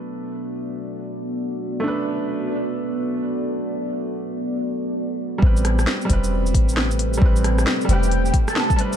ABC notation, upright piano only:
X:1
M:4/4
L:1/8
Q:"Swing 16ths" 1/4=134
K:Ador
V:1 name="Upright piano"
[A,DB]8 | [A,DB]8- | [A,DB]8 | [G,CB]3 [G,CB]4- [G,CB] |
[G,CB]3 [G,CB]4 [G,CB] |]